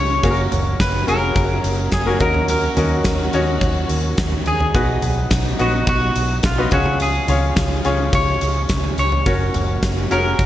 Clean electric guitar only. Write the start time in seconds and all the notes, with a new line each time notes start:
Already playing: C#5
0.81 B4
1.09 A#4
1.94 G#4
2.22 A#4
2.50 A#4
4.47 G#4
5.61 F#4
5.89 F#4
6.46 F4
6.74 F#4
7.02 G#4
8.15 C#5
8.99 C#5
10.12 A#4